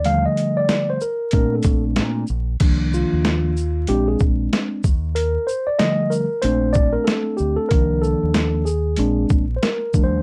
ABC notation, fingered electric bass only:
X:1
M:4/4
L:1/16
Q:"Swing 16ths" 1/4=94
K:Bb
V:1 name="Fingered electric bass" clef=bass
E,,2 z6 B,,2 B,,,2 B,,2 B,,,2 | C,,3 E,,4- E,, B,,,2 B,,,2 z2 E,,2- | E,,2 z6 B,,,4 z2 D,, z | C,,3 E,,4- E,, B,,,2 B,,,2 z2 E,,2 |]